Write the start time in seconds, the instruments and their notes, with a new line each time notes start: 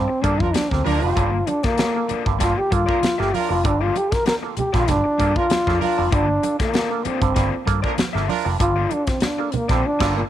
Already playing: trombone C4
0.08 muted overdriven electric guitar stroke
0.22 fingered electric bass G2, overdriven electric guitar A#3 F4 A4 D5, clav A#3 F4 A4, trombone D4, kick, closed hi-hat
0.39 fingered electric bass F2, horn section D4 F4 A#4, clav F4 A4, trombone F4, muted overdriven electric guitar stroke, kick
0.54 trombone D4, muted overdriven electric guitar stroke, snare, closed hi-hat, high conga
0.71 fingered electric bass D2, clav A#3 F4 A4, trombone C4, kick, snare
0.84 fingered electric bass D2, overdriven electric guitar A#3 F4 A4 D5, horn section D4 F4 A#4, trombone D4, open hi-hat, high conga
1.02 fingered electric bass F1, clav G2 D3, trombone F4, muted overdriven electric guitar stroke
1.16 fingered electric bass G1, clav G2 D3, overdriven electric guitar A#3 F4 A4 D5, kick, closed hi-hat
1.32 muted overdriven electric guitar stroke
1.47 trombone D4, clav F4 A4, muted overdriven electric guitar stroke, closed hi-hat, muted conga
1.63 trombone A#3, overdriven electric guitar A#3 F4 A4 D5, muted fingered electric bass stroke, kick, snare, closed hi-hat
1.78 overdriven electric guitar A#3 F4 A4 D5, snare, closed hi-hat, high conga
1.95 clav A#3 F4 A4, muted overdriven electric guitar stroke
2.09 overdriven electric guitar A#3 F4 A4 D5, muted fingered electric bass stroke, closed hi-hat, muted conga
2.25 fingered electric bass G1, clav G2 D3, muted overdriven electric guitar stroke, kick
2.39 fingered electric bass G1, clav G2 D3, overdriven electric guitar A#3 F4 A4 D5, trombone F4, kick, snare, closed hi-hat, muted conga
2.58 trombone G4
2.71 fingered electric bass G2, clav A#3 F4 A4, trombone F4, muted overdriven electric guitar stroke, kick, closed hi-hat
2.86 overdriven electric guitar A#3 F4 A4 D5, horn section D4 F4 A#4, clav A4, kick
3.01 muted overdriven electric guitar stroke, muted fingered electric bass stroke, snare, closed hi-hat, high conga
3.18 fingered electric bass G1, clav A#3 F4 A4, overdriven electric guitar A#3 F4 A4 E5, trombone G4, snare
3.33 horn section D4 F4 A#4, trombone F4, muted overdriven electric guitar stroke, open hi-hat, high conga
3.49 fingered electric bass F1, clav G2 D3, trombone F4, muted overdriven electric guitar stroke
3.64 fingered electric bass G1, clav G2 D3, trombone D4, muted overdriven electric guitar stroke, kick, closed hi-hat
3.81 overdriven electric guitar A#3 F4 A4 D5, trombone F4
3.96 clav F4 A4, trombone G4, muted overdriven electric guitar stroke, closed hi-hat, muted conga
4.12 trombone A#4, muted overdriven electric guitar stroke, muted fingered electric bass stroke, kick, snare, closed hi-hat
4.25 trombone A#4, muted overdriven electric guitar stroke, snare, closed hi-hat, high conga
4.43 clav A#3 F4 A4, muted overdriven electric guitar stroke
4.57 trombone G4, muted fingered electric bass stroke, closed hi-hat, muted conga, low conga
4.73 fingered electric bass A#1, clav G2 D3, overdriven electric guitar A#3 F4 A4 D5, trombone F4, kick, snare, closed hi-hat
4.88 fingered electric bass G1, clav G2 D3, trombone D4, kick, snare, closed hi-hat, muted conga, low conga
5.04 muted overdriven electric guitar stroke
5.18 fingered electric bass G2, overdriven electric guitar A#3 F4 A4 D5, clav A#3 F4 A4, kick, closed hi-hat
5.35 horn section D4 F4 A#4, trombone F4, clav A4, muted overdriven electric guitar stroke, kick
5.50 muted overdriven electric guitar stroke, muted fingered electric bass stroke, snare, closed hi-hat, high conga
5.67 fingered electric bass F2, clav A#3 F4 A4, overdriven electric guitar A#3 F4 A4 D5, kick, snare
5.80 horn section D4 F4 A#4, trombone F4, muted overdriven electric guitar stroke, open hi-hat, high conga
5.98 fingered electric bass F1, clav G2 D3, muted overdriven electric guitar stroke
6.11 fingered electric bass G1, clav G2 D3, overdriven electric guitar A#3 F4 A4 D5, trombone D4, kick, closed hi-hat
6.28 muted overdriven electric guitar stroke
6.43 clav F4 A4, muted overdriven electric guitar stroke, closed hi-hat, muted conga
6.59 trombone A#3, overdriven electric guitar A#3 F4 A4 D5, muted fingered electric bass stroke, kick, snare, closed hi-hat
6.74 overdriven electric guitar A#3 F4 A4 D5, snare, closed hi-hat, high conga
6.90 clav A#3 F4 A4, muted overdriven electric guitar stroke
7.05 overdriven electric guitar A#3 F4 A4 D5, trombone C4, muted fingered electric bass stroke, closed hi-hat, muted conga
7.21 fingered electric bass G1, clav G2 D3, muted overdriven electric guitar stroke, kick, closed hi-hat
7.35 fingered electric bass G1, clav G2 D3, overdriven electric guitar A#3 F4 A4 D5, kick, snare, closed hi-hat, muted conga
7.66 fingered electric bass G2, clav A#3 F4 A4, muted overdriven electric guitar stroke, kick, closed hi-hat
7.82 overdriven electric guitar A#3 F4 A4 D5, horn section D4 F4 A#4, clav F4 A4, kick
7.98 muted overdriven electric guitar stroke, muted fingered electric bass stroke, snare, closed hi-hat, high conga
8.13 fingered electric bass G1, clav A#3 F4 A4, overdriven electric guitar A#3 F4 A4 E5, snare
8.28 horn section D4 F4 A#4, muted overdriven electric guitar stroke, open hi-hat, high conga
8.44 fingered electric bass F1, clav G2 D3, muted overdriven electric guitar stroke
8.60 fingered electric bass G1, clav G2 D3, trombone F4, muted overdriven electric guitar stroke, kick, closed hi-hat
8.76 overdriven electric guitar A#3 F4 A4 D5
8.91 trombone D4, clav F4 A4, muted overdriven electric guitar stroke, closed hi-hat, muted conga
9.07 trombone C4, muted fingered electric bass stroke, muted overdriven electric guitar stroke, kick, snare, closed hi-hat
9.20 trombone D4, muted overdriven electric guitar stroke, snare, closed hi-hat, high conga
9.38 clav A#3 F4 A4, muted overdriven electric guitar stroke
9.52 trombone A#3, muted fingered electric bass stroke, closed hi-hat, muted conga, low conga
9.69 fingered electric bass A#1, clav G2 D3, overdriven electric guitar A#3 F4 A4 D5, trombone C4, kick, snare, closed hi-hat
9.86 trombone D4
9.99 fingered electric bass G1, clav G2 D3, overdriven electric guitar A#3 F4 A4 D5, horn section D4 F4 A#4, kick, snare, crash
10.17 trombone A#2